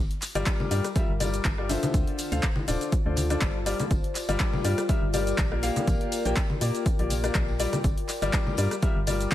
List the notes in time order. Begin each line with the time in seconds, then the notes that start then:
Already playing: F4
0.09 A#4, closed hi-hat
0.22 clap, open hi-hat, tambourine, shaker
0.35 G1 G3 F4 G4 A#4 D5, closed hi-hat, tambourine, shaker
0.46 kick, clap, closed hi-hat, tambourine, shaker
0.60 tambourine, high conga
0.71 G2 G3 F4 G4 A#4 D5, open hi-hat, tambourine, shaker
0.84 D5 G5, cross-stick, closed hi-hat, tambourine, shaker
0.95 G3 F4 G4 A#4 E5, kick, closed hi-hat, tambourine, shaker
1.09 G1
1.20 G3 F4 G4 A#4 D5, open hi-hat, tambourine, high conga, shaker
1.33 closed hi-hat, tambourine, shaker
1.45 G1, kick, clap, closed hi-hat, tambourine, shaker
1.58 G3 F4 G4 A#4 D5, cross-stick
1.69 D3 F4 A4 C5 E5, open hi-hat, tambourine, shaker
1.83 closed hi-hat, tambourine, high conga, shaker
1.94 D2, kick, closed hi-hat, tambourine, shaker
2.07 closed hi-hat
2.19 open hi-hat, tambourine, shaker
2.32 D2 D3 F4 A4 C5 F5, closed hi-hat, tambourine, shaker
2.43 C5 A5, kick, clap, closed hi-hat, tambourine, shaker
2.56 tambourine, high conga
2.68 D1 D3 F4 A4 C5 D5, open hi-hat, tambourine, shaker
2.81 closed hi-hat, tambourine, shaker
2.92 kick, closed hi-hat, tambourine, shaker
3.06 D2 D3 F4 A4 C5 D5
3.16 open hi-hat, tambourine, high conga, shaker
3.30 D3 F4 A4 C5 D5, cross-stick, closed hi-hat, tambourine, shaker
3.41 G1 G3, kick, clap, closed hi-hat, tambourine, shaker
3.66 G3 F4 G4 A#4 D5, open hi-hat, tambourine, shaker
3.79 closed hi-hat, tambourine, high conga, shaker
3.91 G1, kick, closed hi-hat, tambourine, shaker
4.04 closed hi-hat
4.12 A#4, clap, open hi-hat, tambourine
4.16 shaker
4.29 G1 G3 F4 G4 A#4 D5, closed hi-hat, tambourine, shaker
4.40 kick, clap, closed hi-hat, shaker
4.53 G5, tambourine, high conga
4.64 G2 G3 F4 G4 A#4 D5, open hi-hat, tambourine, shaker
4.78 cross-stick, closed hi-hat, tambourine, shaker
4.89 G3 F4 G4 A#4 E5, kick, closed hi-hat, tambourine, shaker
5.02 G1
5.13 G3 F4 G4 A#4 D5, open hi-hat, tambourine, high conga, shaker
5.27 closed hi-hat, tambourine, shaker
5.38 A#1, kick, clap, closed hi-hat, tambourine, shaker
5.52 A#3 F4 G4 A#4 D5, cross-stick
5.63 A#3 F4 G4 A#4 F5, open hi-hat, tambourine, shaker
5.76 closed hi-hat, tambourine, high conga, shaker
5.87 A#1, kick, closed hi-hat, tambourine, shaker
6.01 closed hi-hat
6.12 open hi-hat, tambourine, shaker
6.25 A#1 A#3 F4 G4 A#4 G5, closed hi-hat, tambourine, shaker
6.36 kick, clap, closed hi-hat, tambourine, shaker
6.49 tambourine, high conga
6.61 A#2 A#3 F4 G4 A#4 D5, open hi-hat, tambourine, shaker
6.75 closed hi-hat, tambourine, shaker
6.86 kick, closed hi-hat, tambourine, shaker
6.99 A#1 A#3 F4 G4 A#4 D5, closed hi-hat
7.10 open hi-hat, tambourine, high conga, shaker
7.24 A#3 F4 G4 A#4 D5, cross-stick, closed hi-hat, tambourine, shaker
7.34 A#1 A#3 F4 A#4, kick, clap, closed hi-hat, tambourine, shaker
7.48 tambourine
7.60 G3 F4 G4 A#4 D5, open hi-hat, tambourine, shaker
7.73 cross-stick, closed hi-hat, tambourine, high conga, shaker
7.84 G1, kick, closed hi-hat, tambourine, shaker
7.98 closed hi-hat
8.08 clap, open hi-hat, tambourine, shaker
8.21 G1 G3 F4 G4 A#4 D5, closed hi-hat, tambourine, shaker
8.33 kick, clap, closed hi-hat, tambourine, shaker
8.47 tambourine, high conga
8.57 G2 G3 F4 G4 A#4 D5, open hi-hat, tambourine, shaker
8.71 cross-stick, closed hi-hat, tambourine, shaker
8.82 G3 F4 G4 A#4 E5, kick, closed hi-hat, tambourine, shaker
8.96 G1
9.07 G3 F4 G4 A#4 D5, open hi-hat, tambourine, high conga, shaker
9.20 closed hi-hat, tambourine, shaker
9.32 clap